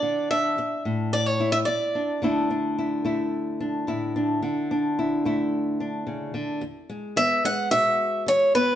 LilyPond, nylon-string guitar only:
\new Staff \with { instrumentName = "Nylon-string guitar" } { \time 4/4 \key d \lydian \tempo 4 = 109 << { e'8 d'2 e'4 d'8 | <a d' e'>8 d'8 e'8 e'4 d'8 e'8 d'8 | r8 d'8 e'8 e'4 d'4. | r8 gis8 b8 gis8 fis'4. b8 | } \\ { d4 r8 a,4. r4 | d4. a4. a,4 | d4. a4. cis8 d8 | e,4 e4 b,4 e4 | } >> }